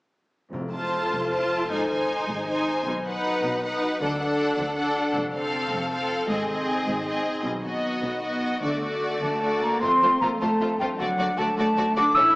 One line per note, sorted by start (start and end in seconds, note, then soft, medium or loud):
0.52 1.02 F1 soft
0.52 1.02 F2 soft
0.52 1.08 F2 medium
0.52 1.72 F2 soft
0.72 1.72 C3 soft
0.72 1.31 F4 soft
0.72 1.30 C5 soft
0.72 1.30 A5 soft
0.93 1.50 A4 soft
1.12 1.61 F1 medium
1.12 1.61 F2 soft
1.12 1.72 F5 soft
1.31 1.70 F4 soft
1.31 1.69 C5 soft
1.31 2.47 C5 soft
1.31 1.70 A5 soft
1.51 1.72 A4 soft
1.70 2.19 G#1 medium
1.70 2.19 G#2 soft
1.70 2.89 G#2 soft
1.70 1.89 D#4 soft
1.70 1.89 C5 soft
1.70 1.88 G#5 soft
1.89 2.89 D#3 soft
1.89 2.47 D#4 soft
1.89 2.46 C5 soft
1.89 2.47 G#5 soft
2.09 2.67 G#4 soft
2.28 2.77 G#1 medium
2.28 2.77 G#2 medium
2.28 3.44 D#5 soft
2.48 2.86 D#4 soft
2.48 2.86 C5 soft
2.48 2.88 C5 soft
2.48 2.86 G#5 soft
2.68 2.89 G#4 soft
2.87 3.35 B1 medium
2.87 3.35 B2 medium
2.87 4.03 B2 medium
3.06 5.18 F#3 soft
3.06 3.62 D#4 soft
3.06 3.62 B4 soft
3.06 3.63 F#5 soft
3.26 3.82 F#4 soft
3.44 3.93 B1 medium
3.44 3.92 B2 medium
3.44 4.03 D#5 soft
3.63 4.01 D#4 soft
3.63 4.03 B4 soft
3.63 4.01 B4 soft
3.63 4.00 F#5 soft
3.83 4.39 F#4 soft
4.01 4.50 D2 medium
4.01 4.49 D3 medium
4.01 5.18 D3 medium
4.01 4.19 D4 soft
4.01 4.20 A4 soft
4.01 4.19 F#5 soft
4.20 6.32 A3 soft
4.20 4.76 D4 soft
4.20 4.76 A4 soft
4.20 4.76 F#5 soft
4.40 4.96 F#4 soft
4.59 5.07 D2 medium
4.59 5.07 D3 medium
4.59 5.18 D5 soft
4.77 5.15 D4 soft
4.77 5.15 A4 soft
4.77 5.91 A4 soft
4.77 5.15 F#5 soft
4.97 5.18 F#4 soft
5.16 5.64 F1 medium
5.16 5.63 F2 medium
5.16 6.32 F2 medium
5.35 6.32 C3 soft
5.35 5.91 C4 soft
5.35 5.91 A4 soft
5.35 5.91 F5 soft
5.55 6.10 F4 soft
5.72 6.20 F1 medium
5.72 6.20 F2 medium
5.72 6.86 C5 soft
5.92 6.29 C4 soft
5.92 6.31 A4 soft
5.92 6.29 A4 soft
5.92 6.29 F5 soft
6.11 6.32 F4 soft
6.29 6.77 G#1 medium
6.29 6.77 G#2 medium
6.29 7.46 G#2 medium
6.29 6.47 C4 soft
6.29 6.48 G#4 soft
6.29 6.48 D#5 soft
6.48 7.46 D#3 soft
6.48 7.04 C4 soft
6.48 7.05 G#4 soft
6.48 7.05 D#5 soft
6.69 7.24 D#4 soft
6.86 7.35 G#1 medium
6.86 7.35 G#2 medium
6.86 7.46 C5 soft
7.05 7.43 C4 soft
7.05 7.46 G#4 soft
7.05 7.44 G#4 soft
7.05 7.44 D#5 soft
7.25 7.83 D#4 soft
7.44 7.93 B1 medium
7.44 7.93 B2 medium
7.44 8.65 B2 medium
7.63 9.85 F#3 soft
7.63 8.21 B3 soft
7.63 8.20 F#4 soft
7.63 8.21 D#5 soft
7.84 8.41 D#4 soft
8.02 8.52 B1 medium
8.02 8.53 B2 medium
8.02 8.65 B4 soft
8.21 8.62 B3 soft
8.21 8.60 F#4 soft
8.21 9.03 F#4 soft
8.21 8.62 D#5 soft
8.43 8.65 D#4 soft
8.62 9.13 D2 soft
8.62 9.13 D3 medium
8.62 9.85 D3 soft
8.62 8.80 A3 soft
8.62 8.81 F#4 soft
8.62 8.81 D5 soft
8.81 9.41 A3 soft
8.81 12.18 A3 soft
8.81 9.41 F#4 soft
8.81 9.42 D5 soft
9.04 9.62 F#4 soft
9.22 9.73 D2 soft
9.22 9.73 D3 soft
9.22 9.60 A3 soft
9.22 9.85 D5 soft
9.22 9.60 A5 medium
9.42 9.80 A3 soft
9.42 9.82 F#4 soft
9.42 10.20 A4 soft
9.42 9.82 D5 soft
9.62 9.82 A#3 soft
9.62 9.85 F#4 soft
9.62 9.81 A#5 medium
9.82 9.90 F2 medium
9.82 11.02 F3 medium
9.82 9.90 A3 soft
9.82 10.22 C4 medium
9.82 9.90 F4 soft
9.82 9.90 C5 soft
9.82 10.20 C6 medium
10.02 10.10 F2 soft
10.02 10.10 A3 soft
10.02 10.10 F4 soft
10.02 10.10 C5 soft
10.21 10.29 F2 soft
10.21 10.29 A3 soft
10.21 10.42 A#3 medium
10.21 10.30 F4 soft
10.21 11.37 A4 soft
10.21 10.30 C5 soft
10.21 10.27 A#5 medium
10.40 10.49 F2 soft
10.40 10.49 A3 soft
10.40 10.80 A3 medium
10.40 10.79 C4 soft
10.40 10.50 F4 soft
10.40 10.48 C5 soft
10.40 10.79 A5 medium
10.61 10.69 F2 soft
10.61 10.69 A3 soft
10.61 10.94 D4 soft
10.61 10.69 F4 soft
10.61 10.69 C5 soft
10.79 10.88 F2 soft
10.79 11.00 G3 medium
10.79 10.88 A3 soft
10.79 11.02 C4 soft
10.79 10.89 F4 soft
10.79 10.89 C5 soft
10.79 10.85 G5 medium
10.99 11.08 D2 soft
10.99 11.38 F#3 medium
10.99 12.18 F#3 medium
10.99 11.07 A3 medium
10.99 11.07 F#4 soft
10.99 11.08 D5 soft
10.99 11.40 F#5 medium
11.18 11.27 D2 soft
11.18 11.27 A3 soft
11.18 11.56 D4 soft
11.18 11.26 F#4 soft
11.18 11.28 D5 soft
11.37 11.47 D2 soft
11.37 11.46 A3 soft
11.37 11.57 A3 medium
11.37 11.45 F#4 soft
11.37 12.35 A4 soft
11.37 11.47 D5 soft
11.37 11.58 A5 medium
11.57 11.66 D2 soft
11.57 11.96 A3 medium
11.57 11.67 A3 soft
11.57 11.95 D4 soft
11.57 11.65 F#4 soft
11.57 11.66 D5 soft
11.57 11.96 A5 medium
11.77 11.86 D2 soft
11.77 11.85 A3 soft
11.77 12.10 D#4 soft
11.77 11.85 F#4 soft
11.77 11.85 D5 soft
11.96 12.04 D2 soft
11.96 12.04 A3 soft
11.96 12.04 D4 medium
11.96 12.17 D4 soft
11.96 12.05 F#4 soft
11.96 12.05 D5 soft
11.96 12.16 D6 medium
12.15 12.25 A1 medium
12.15 12.35 A2 medium
12.15 12.24 A3 medium
12.15 12.23 C#4 medium
12.15 12.35 E4 medium
12.15 12.25 C#5 medium
12.15 12.35 E6 medium